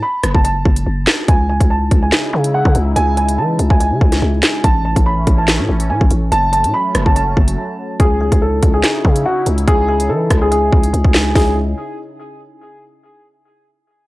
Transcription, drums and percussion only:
0.23 cross-stick, closed hi-hat
0.35 kick
0.45 closed hi-hat
0.65 kick
0.76 closed hi-hat
1.07 snare, clap, closed hi-hat
1.28 kick, closed hi-hat
1.61 kick, closed hi-hat
1.91 kick, closed hi-hat
2.12 snare, clap, closed hi-hat
2.44 closed hi-hat
2.65 kick
2.75 closed hi-hat
2.96 closed hi-hat
3.17 closed hi-hat
3.29 closed hi-hat
3.59 closed hi-hat
3.70 kick
3.80 closed hi-hat
4.01 kick
4.12 snare, closed hi-hat
4.43 snare, clap, closed hi-hat
4.64 kick, closed hi-hat
4.96 kick, closed hi-hat
5.27 kick, closed hi-hat
5.48 snare, clap, closed hi-hat
5.80 closed hi-hat
6.01 kick
6.11 closed hi-hat
6.32 closed hi-hat
6.53 closed hi-hat
6.64 closed hi-hat
6.95 cross-stick, closed hi-hat
7.06 kick
7.16 closed hi-hat
7.37 kick
7.48 closed hi-hat
8.00 kick, closed hi-hat
8.32 kick, closed hi-hat
8.63 kick, closed hi-hat
8.84 snare, clap, closed hi-hat
9.05 kick
9.16 closed hi-hat
9.46 closed hi-hat
9.58 closed hi-hat
9.68 kick, closed hi-hat
10.00 closed hi-hat
10.30 kick, cross-stick, closed hi-hat
10.52 closed hi-hat
10.73 kick
10.83 closed hi-hat
10.94 closed hi-hat
11.05 kick
11.14 snare, clap, open hi-hat
11.35 kick, snare, open hi-hat

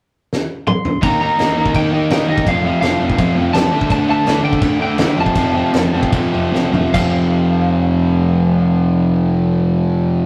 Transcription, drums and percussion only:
0.33 snare
0.67 mid tom
0.85 floor tom
1.03 kick, crash
1.39 snare, crash
1.66 kick
1.74 kick, crash
2.10 snare, crash
2.38 kick
2.47 kick, crash
2.82 snare, crash
3.10 kick
3.19 kick, crash
3.54 snare, crash
3.81 kick
3.90 kick, crash
4.26 snare, crash
4.53 kick
4.62 kick, crash
4.98 snare, crash
5.26 kick
5.35 kick, crash
5.74 snare, crash
6.03 kick
6.13 kick, crash
6.55 snare
6.73 floor tom
6.94 kick, crash

